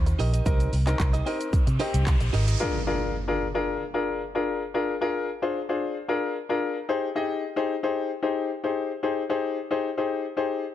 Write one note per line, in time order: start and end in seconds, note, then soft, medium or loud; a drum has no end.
0.00 0.13 D#2 medium
0.00 0.19 C4 medium
0.00 0.19 D#4 medium
0.00 0.19 F4 loud
0.06 muted clean electric guitar stroke medium
0.06 closed hi-hat medium
0.06 shaker medium
0.19 0.40 A#1 medium
0.19 0.33 D#4 medium
0.19 0.33 G4 medium
0.19 0.32 A#4 medium
0.19 0.32 D#5 medium
0.19 open hi-hat medium
0.19 shaker medium
0.33 0.44 D#4 medium
0.33 0.45 G4 medium
0.33 0.45 A#4 medium
0.33 0.46 D#5 medium
0.33 closed hi-hat medium
0.33 shaker soft
0.33 shaker medium
0.45 0.67 C2 loud
0.45 0.73 C4 medium
0.45 0.71 D#4 medium
0.45 0.73 D#4 medium
0.45 0.71 G4 medium
0.45 0.73 A#4 loud
0.45 0.71 A#4 medium
0.45 0.71 D#5 medium
0.45 kick loud
0.45 riser medium
0.45 shaker medium
0.60 closed hi-hat medium
0.60 shaker medium
0.60 shaker soft
0.72 0.93 C2 medium
0.72 muted clean electric guitar stroke soft
0.72 open hi-hat medium
0.72 shaker medium
0.87 1.13 C4 medium
0.87 1.14 D#4 medium
0.87 0.98 D#4 medium
0.87 0.98 G4 medium
0.87 0.99 A#4 medium
0.87 1.14 A#4 loud
0.87 0.99 D#5 medium
0.87 clap medium
0.87 closed hi-hat medium
0.87 shaker soft
0.87 shaker medium
0.99 1.20 C2 loud
0.99 muted clean electric guitar stroke soft
0.99 kick loud
0.99 clap loud
0.99 shaker medium
1.13 1.25 D#4 soft
1.13 1.25 G4 medium
1.13 1.26 A#4 medium
1.13 1.26 D#5 medium
1.13 closed hi-hat medium
1.13 shaker medium
1.13 shaker soft
1.26 1.62 C4 medium
1.26 1.46 D#4 medium
1.26 1.62 D#4 medium
1.26 1.40 G4 loud
1.26 1.62 A#4 loud
1.26 1.40 A#4 loud
1.26 1.39 D#5 loud
1.26 open hi-hat medium
1.26 shaker soft
1.40 muted clean electric guitar stroke medium
1.40 closed hi-hat medium
1.40 shaker medium
1.53 muted fingered electric bass stroke soft
1.53 kick loud
1.53 shaker medium
1.67 1.77 C3 loud
1.67 muted clean electric guitar stroke soft
1.67 closed hi-hat medium
1.67 shaker medium
1.67 shaker soft
1.79 2.33 C4 medium
1.79 2.00 D#4 medium
1.79 2.33 D#4 medium
1.79 2.33 G4 loud
1.79 1.94 G4 loud
1.79 1.93 A#4 loud
1.79 1.93 D#5 medium
1.79 open hi-hat medium
1.79 shaker medium
1.94 2.15 C2 medium
1.94 muted clean electric guitar stroke soft
1.94 closed hi-hat medium
1.94 shaker medium
2.06 muted clean electric guitar stroke soft
2.06 kick loud
2.06 clap loud
2.06 shaker medium
2.20 2.31 A#1 medium
2.20 muted clean electric guitar stroke soft
2.20 closed hi-hat medium
2.20 shaker medium
2.33 2.54 G#1 medium
2.33 2.47 D#4 medium
2.33 2.47 G4 medium
2.33 2.47 A#4 medium
2.33 2.46 D#5 loud
2.33 open hi-hat medium
2.33 shaker medium
2.47 2.63 D#4 medium
2.47 2.62 G4 medium
2.47 2.62 A#4 medium
2.47 2.62 D#5 medium
2.47 closed hi-hat medium
2.47 shaker soft
2.47 shaker medium
2.60 2.78 D4 medium
2.60 2.79 F4 medium
2.60 2.79 G#4 medium
2.60 2.79 A#4 loud
2.60 impact medium
2.87 3.14 D4 medium
2.87 3.14 F4 medium
2.87 3.14 G#4 medium
2.87 3.14 A#4 loud
3.28 3.45 D4 medium
3.28 3.45 F4 medium
3.28 3.45 G#4 medium
3.28 3.45 A#4 loud
3.54 3.81 D4 medium
3.54 3.81 F4 medium
3.54 3.82 G#4 medium
3.54 3.82 A#4 loud
3.94 4.21 D4 medium
3.94 4.21 F4 medium
3.94 4.21 G#4 medium
3.94 4.21 A#4 loud
4.35 4.62 D4 medium
4.35 4.62 F4 medium
4.35 4.62 G#4 medium
4.35 4.62 A#4 loud
4.74 4.93 D4 medium
4.74 4.93 F4 medium
4.74 4.93 G#4 medium
4.74 4.93 A#4 loud
5.01 5.28 D4 medium
5.01 5.28 F4 medium
5.01 5.28 G#4 medium
5.01 5.28 A#4 loud
5.42 5.60 D4 medium
5.42 5.60 F4 medium
5.42 5.60 G#4 medium
5.42 5.60 C5 loud
5.69 5.96 D4 medium
5.69 5.96 F4 medium
5.69 5.96 G#4 medium
5.69 5.96 C5 loud
6.08 6.35 D4 medium
6.08 6.35 F4 medium
6.08 6.35 G#4 medium
6.08 6.35 A#4 loud
6.49 6.76 D4 medium
6.49 6.76 F4 medium
6.49 6.76 G#4 medium
6.49 6.76 A#4 loud
6.89 7.07 D#4 medium
6.89 7.07 G4 medium
6.89 7.07 G#4 medium
6.89 7.07 C5 loud
7.16 7.42 D#4 medium
7.16 7.42 G4 medium
7.16 7.42 G#4 medium
7.16 7.43 D#5 loud
7.56 7.74 D#4 medium
7.56 7.74 G4 medium
7.56 7.74 G#4 medium
7.56 7.74 C5 loud
7.83 8.10 D#4 medium
7.83 8.10 G4 medium
7.83 8.10 G#4 medium
7.83 8.10 C5 loud
8.23 8.49 D#4 medium
8.23 8.49 G4 medium
8.23 8.50 G#4 medium
8.23 8.50 C5 medium
8.64 8.90 D#4 medium
8.64 8.90 G4 medium
8.64 8.91 G#4 medium
8.64 8.91 C5 loud
9.03 9.21 D#4 medium
9.03 9.21 G4 medium
9.03 9.21 G#4 medium
9.03 9.22 C5 loud
9.30 9.56 D#4 medium
9.30 9.57 G4 medium
9.30 9.57 G#4 medium
9.30 9.57 C5 loud
9.71 9.88 D#4 medium
9.71 9.88 G4 medium
9.71 9.88 G#4 medium
9.71 9.88 C5 loud
9.97 10.24 D#4 medium
9.97 10.24 G4 medium
9.97 10.24 G#4 medium
9.97 10.25 C5 loud
10.37 10.64 D#4 medium
10.37 10.64 G4 medium
10.37 10.64 G#4 medium
10.37 10.64 C5 loud